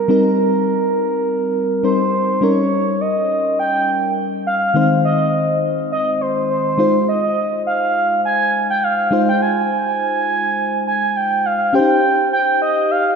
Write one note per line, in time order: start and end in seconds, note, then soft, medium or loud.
0.00 1.84 A#4 medium
0.08 1.80 G3 medium
0.08 1.80 C4 medium
0.08 1.81 D#4 medium
0.08 1.81 A#4 medium
1.83 2.40 G3 medium
1.83 2.42 C4 soft
1.83 2.41 D#4 soft
1.83 2.42 A#4 medium
1.83 2.44 C5 medium
2.41 4.71 G3 medium
2.41 4.71 C#4 medium
2.41 4.71 D#4 medium
2.41 4.72 A#4 medium
2.41 3.02 C#5 medium
3.01 3.59 D#5 medium
3.59 4.13 G5 loud
4.47 5.01 F5 loud
4.74 6.75 D#3 medium
4.74 6.75 G#3 medium
4.74 6.75 C4 medium
4.74 6.75 D#4 medium
4.74 6.76 C5 medium
5.05 5.59 D#5 loud
5.92 6.23 D#5 loud
6.21 6.50 C5 medium
6.50 7.04 C5 medium
6.78 9.07 G#3 medium
6.78 9.08 D#4 medium
6.78 9.08 F4 medium
6.78 9.09 C5 medium
7.08 7.63 D#5 loud
7.67 8.21 F5 loud
8.25 8.67 G#5 loud
8.70 8.85 G5 loud
8.84 9.28 F5 loud
9.11 11.40 G#3 medium
9.11 11.41 D#4 medium
9.11 11.41 F4 medium
9.11 11.42 C5 medium
9.29 9.41 G5 loud
9.42 10.83 G#5 loud
10.87 11.18 G#5 medium
11.16 11.47 G5 medium
11.46 11.74 F5 medium
11.73 11.81 C#4 medium
11.73 13.16 G4 medium
11.73 13.16 C5 medium
11.73 12.29 G5 loud
11.79 13.16 D#4 medium
12.33 12.60 G5 medium
12.62 12.93 D#5 loud
12.91 13.16 F5 loud